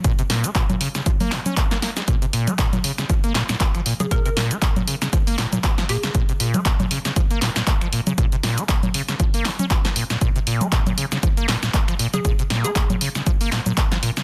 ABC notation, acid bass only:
X:1
M:4/4
L:1/16
Q:"Swing 16ths" 1/4=118
K:Bbm
V:1 name="Acid bass" clef=bass
B,, C, B,, B, B,, B,, D, D, F, B, B,, D B, B, B, A, | B,, C, B,, B, B,, B,, D, D, F, B, B,, B,, B, F, B,, D, | B,, C, B,, B, B,, B,, D, D, F, B, B,, B,, B, F, B,, D, | B,, C, B,, B, B,, B,, D, D, F, B, B,, B,, B, F, B,, D, |
B,, C, B,, B, B,, B,, D, D, F, B, C, D F, F, B,, B,, | B,, C, B,, B, B,, B,, D, D, F, B, B,, B,, B, F, B,, D, | B,, C, B,, B, B,, B,, D, D, F, B, B,, B,, B, F, B,, D, |]